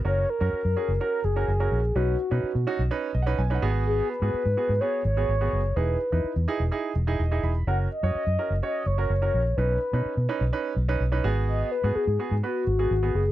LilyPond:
<<
  \new Staff \with { instrumentName = "Soft synth lead" } { \time 4/4 \key fis \mixolydian \tempo 4 = 126 cis''8 ais'4. ais'8 gis'4. | fis'2. r4 | gis'8 b'4. cis''8 cis''4. | b'2 r2 |
fis''8 dis''4. dis''8 cis''4. | b'2. r4 | dis''8 b'8 gis'8. gis'16 fis'4. gis'8 | }
  \new Staff \with { instrumentName = "Grand piano" } { \time 4/4 \key fis \mixolydian << { r1 | r2 \tuplet 3/2 { r8. dis''16 fis''8 gis''8 fis''8 gis''8 } | r1 | r2. dis''8 b''8 |
r1 | r1 | r1 | } \\ { <cis' fis' ais'>8 r16 <cis' fis' ais'>8 r16 <cis' fis' gis'>16 r16 <cis' fis' ais'>8 r16 <cis' fis' ais'>16 r16 <cis' fis' ais'>8 r16 | <cis' dis' b'>8 r16 <cis' dis' b'>8 r16 <cis' dis' fis'>16 r16 <cis' dis' b'>8 r16 <cis' dis' b'>16 r16 <cis' dis' b'>16 <b fis' gis'>8~ | <b fis' gis'>8 r16 <b fis' gis'>8 r16 <b fis' gis'>16 r16 <b fis' gis'>8 r16 <b fis' gis'>16 r16 <b fis' gis'>8 r16 | <dis' e' gis'>8 r16 <dis' e' b'>8 r16 <dis' e' gis'>16 r16 <dis' e' gis'>8 r16 <dis' e' gis'>16 r16 <dis' e' gis'>8 r16 |
<cis' fis' ais'>8 r16 <cis' fis' cis''>8 r16 <cis' fis' ais'>16 r16 <cis' fis' cis''>8 r16 <cis' fis' ais'>16 r16 <cis' fis' ais'>8 r16 | <cis' dis' b'>8 r16 <cis' dis' b'>8 r16 <cis' dis' b'>16 r16 <cis' dis' b'>8 r16 <cis' dis' b'>16 r16 <cis' dis' b'>16 <b fis' gis'>8~ | <b fis' gis'>8 r16 <b fis' gis'>8 r16 <b fis' gis'>16 r16 <b fis' b'>8 r16 <b fis' gis'>16 r16 <b fis' gis'>8 r16 | } >> }
  \new Staff \with { instrumentName = "Fingered electric bass" } { \clef bass \time 4/4 \key fis \mixolydian fis,,8 r16 fis,16 r16 fis,16 r16 fis,,16 r8 fis,,8 fis,,8 ais,,8 | b,,8 r16 b,16 r16 b,16 r16 b,,16 r8 b,,8 b,,8 gis,,8~ | gis,,8 r16 gis,16 r16 gis,16 r16 gis,16 r8 gis,,8 gis,,8 fis,,8 | e,,8 r16 e,16 r16 e,16 r16 e,,16 r8 e,,8 e,,8 e,,8 |
fis,,8 r16 fis,16 r16 fis,16 r16 fis,,16 r8 fis,,8 fis,,8 ais,,8 | b,,8 r16 b,16 r16 b,16 r16 b,,16 r8 b,,8 b,,8 gis,,8~ | gis,,8 r16 gis,16 r16 gis,16 r16 gis,16 r8 gis,,8 gis,,8 fis,,8 | }
>>